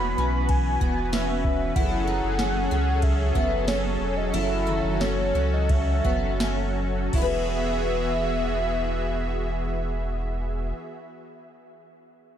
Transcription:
0.00 0.16 E1 loud
0.00 1.72 E3 medium
0.00 1.72 B3 medium
0.00 0.17 C#4 medium
0.00 1.72 F#4 medium
0.00 1.72 B4 medium
0.00 0.50 B5 loud
0.18 0.78 B1 medium
0.18 0.81 C#4 medium
0.49 1.14 G#5 loud
0.49 kick loud
0.49 ride medium
0.81 1.72 E1 medium
0.81 1.12 B3 medium
0.81 kick loud
1.13 1.76 C#4 medium
1.13 1.77 E5 loud
1.13 snare loud
1.13 ride medium
1.13 tambourine medium
1.45 kick medium
1.75 2.21 F#1 loud
1.75 7.09 F#3 medium
1.75 7.09 C#4 medium
1.75 2.08 E4 medium
1.75 4.31 G#4 medium
1.75 7.09 A4 medium
1.75 3.05 F#5 loud
1.75 kick loud
1.75 ride medium
2.07 2.39 D#4 medium
2.24 2.69 F#1 loud
2.39 2.70 C#4 medium
2.39 snare loud
2.39 ride soft
2.39 tambourine medium
2.71 3.32 C#2 medium
2.71 3.35 C#4 medium
3.02 3.69 E5 loud
3.02 kick loud
3.02 ride medium
3.35 3.97 F#1 medium
3.35 3.67 B3 medium
3.35 kick medium
3.68 4.34 C#4 medium
3.68 4.18 C#5 medium
3.68 snare loud
3.68 ride medium
3.68 tambourine medium
4.01 4.32 E1 medium
4.17 4.35 D#5 medium
4.34 4.81 F#1 loud
4.34 4.67 E4 loud
4.34 7.11 F#4 medium
4.34 5.03 E5 loud
4.34 ride medium
4.67 5.01 D#3 medium
4.84 5.33 F#1 loud
5.01 5.34 C#4 medium
5.01 5.55 C#5 medium
5.01 snare loud
5.01 ride medium
5.01 tambourine medium
5.35 6.01 C#2 medium
5.35 6.04 C#4 medium
5.54 5.72 D#5 medium
5.69 6.77 E5 loud
5.69 kick loud
5.69 ride medium
6.05 7.10 F#1 loud
6.05 6.40 B3 medium
6.05 kick medium
6.40 7.14 C#4 medium
6.40 snare loud
6.40 ride medium
6.40 tambourine medium
7.13 10.73 E1 medium
7.13 10.73 E3 medium
7.13 10.73 B3 medium
7.13 7.25 E4 medium
7.13 10.73 F#4 medium
7.13 10.73 G#4 medium
7.13 10.73 E5 medium
7.13 10.74 E5 loud
7.13 kick loud
7.13 crash medium
7.17 10.76 G#4 medium
7.21 10.81 B4 medium
7.21 10.85 E5 medium

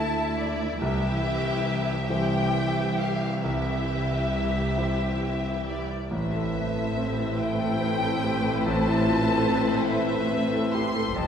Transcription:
0.00 0.77 D2 soft
0.00 0.84 D2 medium
0.00 0.78 A3 soft
0.00 0.77 E4 soft
0.00 0.78 E4 medium
0.00 0.82 E4 medium
0.00 0.78 A4 soft
0.00 0.78 E5 medium
0.00 0.39 A5 medium
0.38 0.81 D5 medium
0.81 5.87 C2 soft
0.81 2.07 C2 medium
0.81 2.07 E3 medium
0.81 2.07 E4 medium
0.81 2.06 G4 medium
0.81 2.06 E5 medium
0.81 2.08 E5 medium
2.09 3.39 E3 soft
2.09 3.41 E3 soft
2.09 3.40 G4 soft
2.09 3.41 G4 medium
2.09 3.39 G4 soft
2.09 3.39 C5 soft
2.09 3.40 E5 medium
2.09 2.99 G5 medium
2.99 3.44 F5 medium
3.43 4.74 C2 soft
3.43 5.87 E3 soft
3.43 5.87 E4 soft
3.43 5.87 G4 soft
3.43 5.87 E5 medium
3.43 5.64 E5 medium
4.77 6.07 E4 soft
4.77 6.08 G4 soft
4.77 6.08 C5 soft
5.67 6.08 D5 medium
6.11 8.61 A1 soft
6.11 11.12 A1 soft
6.11 11.12 A2 soft
6.11 11.12 A3 medium
6.11 11.12 C4 medium
6.11 11.12 E4 medium
6.11 11.12 B4 medium
6.11 11.12 C5 medium
6.11 7.39 E5 medium
6.33 6.67 A4 soft
6.55 6.76 B4 soft
6.76 7.10 A4 soft
6.97 7.31 C4 soft
7.18 7.52 A4 soft
7.39 7.73 E5 soft
7.39 8.66 G5 medium
7.61 7.94 A4 soft
7.81 8.15 C4 soft
8.03 8.36 A4 soft
8.24 8.44 G4 soft
8.45 8.78 A4 soft
8.64 11.13 A1 medium
8.64 9.90 A5 medium
8.87 9.20 E4 soft
9.07 9.28 F4 soft
9.28 9.61 A4 soft
9.49 9.82 C4 soft
9.70 10.03 A4 soft
9.89 10.73 E5 medium
9.89 10.24 E5 soft
10.12 10.45 A4 soft
10.33 10.66 C4 soft
10.54 10.87 A4 soft
10.72 10.95 G4 soft
10.72 11.15 C6 medium
10.96 11.16 A4 soft
11.14 11.27 F1 medium
11.14 11.27 F2 medium
11.14 11.27 G3 medium
11.14 11.27 C4 medium
11.14 11.27 F4 medium
11.14 11.27 G4 medium
11.14 11.27 C5 medium
11.14 11.27 A5 medium

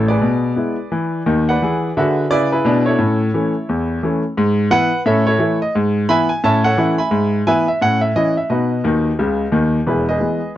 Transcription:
0.00 0.15 A1 medium
0.00 0.16 A2 medium
0.08 1.44 G#4 medium
0.08 1.44 B4 medium
0.08 1.26 D5 medium
0.21 0.51 B2 medium
0.56 0.75 G#3 medium
0.56 0.76 B3 medium
0.56 0.76 E4 medium
0.92 1.21 E3 medium
1.26 1.54 D#2 medium
1.26 1.54 D#3 medium
1.49 1.94 B4 medium
1.49 1.94 D5 medium
1.49 1.89 F#5 medium
1.62 1.89 E3 medium
1.62 1.90 G#4 medium
1.97 2.24 D3 medium
1.97 2.25 F#4 medium
1.97 2.29 G#4 medium
1.97 2.29 B4 medium
1.97 2.26 E5 medium
2.30 2.58 C#3 medium
2.30 2.52 E4 medium
2.30 2.51 G#4 medium
2.30 2.51 B4 medium
2.30 2.48 D5 loud
2.52 2.84 E4 medium
2.52 2.84 G#4 medium
2.52 2.81 B4 medium
2.65 2.92 B2 medium
2.65 2.93 D4 medium
2.86 4.20 E4 medium
2.86 4.20 A4 medium
2.86 4.03 C#5 medium
2.99 3.28 A2 medium
2.99 3.19 C#4 medium
3.34 3.53 E3 medium
3.34 3.53 A3 medium
3.34 3.53 C#4 medium
3.69 3.98 E2 medium
4.03 4.22 E3 medium
4.03 4.22 A3 medium
4.03 4.23 C#4 medium
4.37 4.66 G#2 loud
4.70 4.90 E3 medium
4.70 4.90 B3 medium
4.70 4.90 E4 medium
4.70 5.04 B4 loud
4.70 5.00 F#5 loud
5.06 5.35 A2 loud
5.06 5.26 C#4 medium
5.06 5.26 A4 medium
5.06 5.25 C#5 medium
5.06 5.24 E5 loud
5.27 5.38 E4 medium
5.27 5.59 A4 medium
5.27 5.56 C#5 loud
5.39 5.58 E3 medium
5.39 5.59 A3 medium
5.39 5.59 E4 medium
5.62 5.73 D#5 medium
5.75 6.04 G#2 loud
6.09 6.28 E3 medium
6.09 6.28 B3 medium
6.09 6.28 E4 medium
6.09 6.29 E5 medium
6.09 6.28 G#5 loud
6.09 6.27 B5 loud
6.29 6.41 G#5 loud
6.44 6.73 A2 loud
6.44 6.64 C#4 medium
6.44 6.64 C#5 medium
6.44 6.64 E5 medium
6.44 6.62 A5 loud
6.64 6.97 A4 medium
6.64 6.97 C#5 medium
6.64 6.94 F#5 loud
6.77 6.96 E3 medium
6.77 6.97 C#4 medium
6.77 6.97 E4 medium
6.98 7.44 E5 medium
6.98 7.44 G#5 medium
6.98 7.39 B5 medium
7.11 7.41 G#2 medium
7.47 7.66 E3 medium
7.47 7.66 B3 medium
7.47 7.66 E4 medium
7.47 7.67 B4 medium
7.47 7.67 E5 medium
7.47 7.65 G#5 loud
7.68 7.79 E5 medium
7.82 8.10 A2 medium
7.82 8.02 C#4 medium
7.82 7.99 F#5 loud
8.01 8.13 E5 medium
8.16 8.35 E3 medium
8.16 8.34 C#4 medium
8.16 8.35 E4 medium
8.16 8.33 D#5 loud
8.37 8.48 E5 medium
8.50 8.79 B2 medium
8.50 8.70 D#4 medium
8.50 9.71 F#4 medium
8.50 9.71 B4 medium
8.50 9.55 D#5 medium
8.84 9.10 D#2 medium
8.84 9.10 D#3 medium
9.19 9.45 C#2 medium
9.19 9.45 C#3 medium
9.52 9.78 D#2 medium
9.52 9.78 D#3 medium
9.87 10.16 E1 medium
9.87 10.16 E2 medium
9.87 10.07 E4 medium
9.87 10.07 G#4 medium
9.87 10.05 B4 medium
10.09 10.54 G#4 medium
10.09 10.54 B4 medium
10.09 10.49 D#5 medium
10.20 10.39 E3 soft
10.20 10.40 G#3 soft
10.20 10.40 B3 medium

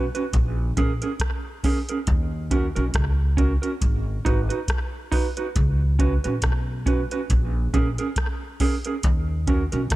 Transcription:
0.15 0.24 C#4 medium
0.15 0.23 F#4 medium
0.15 0.23 B4 medium
0.15 closed hi-hat soft
0.33 0.72 A#1 loud
0.33 kick loud
0.33 closed hi-hat medium
0.77 0.99 A#1 medium
0.77 0.91 C#4 medium
0.77 0.91 G#4 medium
0.77 0.92 A#4 medium
0.77 kick loud
0.77 closed hi-hat medium
1.02 1.11 C#4 medium
1.02 1.10 G#4 medium
1.02 1.10 A#4 medium
1.02 closed hi-hat soft
1.20 kick medium
1.20 cross-stick loud
1.20 closed hi-hat medium
1.64 1.78 C#4 medium
1.64 1.78 G#4 medium
1.64 1.79 A#4 medium
1.64 kick loud
1.64 open hi-hat medium
1.89 1.98 C#4 medium
1.89 1.98 G#4 medium
1.89 1.97 A#4 medium
1.89 closed hi-hat medium
2.07 2.68 D#2 loud
2.07 kick loud
2.07 closed hi-hat loud
2.51 2.65 C#4 medium
2.51 2.65 F#4 loud
2.51 2.66 A#4 medium
2.51 kick medium
2.51 closed hi-hat medium
2.75 2.93 B1 medium
2.75 2.84 C#4 medium
2.75 2.84 F#4 medium
2.75 2.84 A#4 medium
2.75 closed hi-hat soft
2.94 3.56 C#2 medium
2.94 kick loud
2.94 cross-stick loud
2.94 closed hi-hat medium
3.37 3.51 C#4 medium
3.37 3.52 F#4 loud
3.37 3.52 A#4 loud
3.37 kick medium
3.37 closed hi-hat medium
3.62 3.71 C#4 medium
3.62 3.71 F#4 medium
3.62 3.70 A#4 medium
3.62 closed hi-hat soft
3.81 4.20 G#1 medium
3.81 kick loud
3.81 closed hi-hat medium
4.25 4.48 G#1 medium
4.25 4.39 D#4 medium
4.25 4.39 F#4 medium
4.25 4.39 B4 medium
4.25 kick loud
4.25 closed hi-hat medium
4.49 4.59 D#4 soft
4.49 4.58 F#4 medium
4.49 4.58 B4 medium
4.49 closed hi-hat soft
4.68 kick loud
4.68 cross-stick loud
4.68 closed hi-hat medium
5.12 5.25 D#4 medium
5.12 5.26 F#4 medium
5.12 5.26 B4 loud
5.12 kick loud
5.12 open hi-hat medium
5.37 5.46 D#4 soft
5.37 5.46 F#4 medium
5.37 5.45 B4 medium
5.37 closed hi-hat medium
5.56 6.17 C#2 loud
5.56 kick loud
5.56 closed hi-hat medium
5.99 6.13 C#4 medium
5.99 6.13 F#4 medium
5.99 6.14 B4 medium
5.99 kick medium
5.99 closed hi-hat medium
6.24 6.41 A#1 medium
6.24 6.33 C#4 soft
6.24 6.33 F#4 medium
6.24 6.32 B4 medium
6.24 closed hi-hat soft
6.42 7.04 B1 medium
6.42 kick loud
6.42 cross-stick loud
6.42 closed hi-hat medium
6.86 7.00 C#4 medium
6.86 7.00 F#4 medium
6.86 7.01 B4 medium
6.86 kick loud
6.86 closed hi-hat medium
7.11 7.20 C#4 soft
7.11 7.20 F#4 medium
7.11 7.19 B4 medium
7.11 closed hi-hat soft
7.30 7.69 A#1 loud
7.30 kick loud
7.30 closed hi-hat medium
7.74 7.96 A#1 medium
7.74 7.87 C#4 medium
7.74 7.87 G#4 medium
7.74 7.88 A#4 medium
7.74 kick loud
7.74 closed hi-hat medium
7.98 8.07 C#4 medium
7.98 8.07 G#4 medium
7.98 8.06 A#4 medium
7.98 closed hi-hat soft
8.16 kick loud
8.16 cross-stick loud
8.16 closed hi-hat medium
8.60 8.74 C#4 medium
8.60 8.75 G#4 medium
8.60 8.75 A#4 medium
8.60 kick medium
8.60 open hi-hat medium
8.85 8.94 C#4 soft
8.85 8.94 G#4 medium
8.85 8.93 A#4 medium
8.85 closed hi-hat medium
9.03 9.65 D#2 loud
9.03 kick loud
9.03 closed hi-hat loud
9.47 9.61 C#4 medium
9.47 9.62 F#4 medium
9.47 9.62 A#4 medium
9.47 kick medium
9.47 closed hi-hat medium
9.72 9.89 B1 medium
9.72 9.81 C#4 medium
9.72 9.81 F#4 medium
9.72 9.80 A#4 medium
9.72 closed hi-hat soft
9.90 9.96 C#2 loud
9.90 kick loud
9.90 cross-stick loud
9.90 closed hi-hat medium

